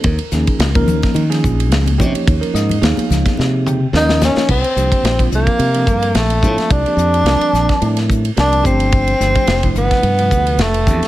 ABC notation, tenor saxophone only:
X:1
M:4/4
L:1/8
Q:"Swing 16ths" 1/4=108
K:Cdor
V:1 name="Tenor saxophone"
z8 | z6 E _D | C3 B,3 A,2 | D4- D z D C- |
C3 =B,3 A,2 |]